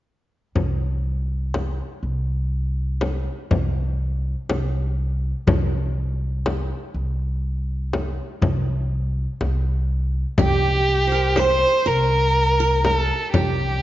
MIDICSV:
0, 0, Header, 1, 5, 480
1, 0, Start_track
1, 0, Tempo, 983607
1, 270, Time_signature, 10, 3, 24, 8
1, 6745, End_track
2, 0, Start_track
2, 0, Title_t, "Qanun"
2, 0, Program_c, 0, 107
2, 5070, Note_on_c, 0, 67, 63
2, 5404, Note_on_c, 0, 72, 46
2, 5426, Note_on_c, 0, 70, 61
2, 5547, Note_off_c, 0, 72, 0
2, 5549, Note_on_c, 0, 72, 76
2, 5683, Note_off_c, 0, 67, 0
2, 5785, Note_off_c, 0, 70, 0
2, 5787, Note_on_c, 0, 70, 72
2, 6064, Note_off_c, 0, 72, 0
2, 6147, Note_off_c, 0, 70, 0
2, 6149, Note_on_c, 0, 70, 69
2, 6509, Note_on_c, 0, 67, 56
2, 6701, Note_off_c, 0, 70, 0
2, 6745, Note_off_c, 0, 67, 0
2, 6745, End_track
3, 0, Start_track
3, 0, Title_t, "Violin"
3, 0, Program_c, 1, 40
3, 5087, Note_on_c, 1, 67, 79
3, 5561, Note_on_c, 1, 72, 86
3, 5568, Note_off_c, 1, 67, 0
3, 5795, Note_on_c, 1, 70, 80
3, 5803, Note_off_c, 1, 72, 0
3, 6275, Note_on_c, 1, 69, 74
3, 6282, Note_off_c, 1, 70, 0
3, 6502, Note_off_c, 1, 69, 0
3, 6505, Note_on_c, 1, 67, 68
3, 6745, Note_off_c, 1, 67, 0
3, 6745, End_track
4, 0, Start_track
4, 0, Title_t, "Upright bass"
4, 0, Program_c, 2, 32
4, 270, Note_on_c, 2, 36, 64
4, 874, Note_off_c, 2, 36, 0
4, 989, Note_on_c, 2, 36, 69
4, 1593, Note_off_c, 2, 36, 0
4, 1710, Note_on_c, 2, 36, 63
4, 2113, Note_off_c, 2, 36, 0
4, 2192, Note_on_c, 2, 36, 71
4, 2594, Note_off_c, 2, 36, 0
4, 2669, Note_on_c, 2, 36, 70
4, 3273, Note_off_c, 2, 36, 0
4, 3388, Note_on_c, 2, 36, 65
4, 3993, Note_off_c, 2, 36, 0
4, 4106, Note_on_c, 2, 36, 70
4, 4510, Note_off_c, 2, 36, 0
4, 4590, Note_on_c, 2, 36, 73
4, 4993, Note_off_c, 2, 36, 0
4, 5073, Note_on_c, 2, 36, 82
4, 5675, Note_off_c, 2, 36, 0
4, 5787, Note_on_c, 2, 36, 81
4, 6392, Note_off_c, 2, 36, 0
4, 6510, Note_on_c, 2, 36, 69
4, 6745, Note_off_c, 2, 36, 0
4, 6745, End_track
5, 0, Start_track
5, 0, Title_t, "Frame drum"
5, 271, Note_on_c, 9, 64, 59
5, 320, Note_off_c, 9, 64, 0
5, 753, Note_on_c, 9, 64, 60
5, 802, Note_off_c, 9, 64, 0
5, 1470, Note_on_c, 9, 64, 60
5, 1518, Note_off_c, 9, 64, 0
5, 1712, Note_on_c, 9, 64, 67
5, 1761, Note_off_c, 9, 64, 0
5, 2194, Note_on_c, 9, 64, 61
5, 2243, Note_off_c, 9, 64, 0
5, 2672, Note_on_c, 9, 64, 76
5, 2721, Note_off_c, 9, 64, 0
5, 3152, Note_on_c, 9, 64, 61
5, 3201, Note_off_c, 9, 64, 0
5, 3872, Note_on_c, 9, 64, 57
5, 3920, Note_off_c, 9, 64, 0
5, 4110, Note_on_c, 9, 64, 68
5, 4158, Note_off_c, 9, 64, 0
5, 4591, Note_on_c, 9, 64, 54
5, 4640, Note_off_c, 9, 64, 0
5, 5064, Note_on_c, 9, 64, 76
5, 5113, Note_off_c, 9, 64, 0
5, 5544, Note_on_c, 9, 64, 62
5, 5592, Note_off_c, 9, 64, 0
5, 6269, Note_on_c, 9, 64, 61
5, 6318, Note_off_c, 9, 64, 0
5, 6509, Note_on_c, 9, 64, 72
5, 6558, Note_off_c, 9, 64, 0
5, 6745, End_track
0, 0, End_of_file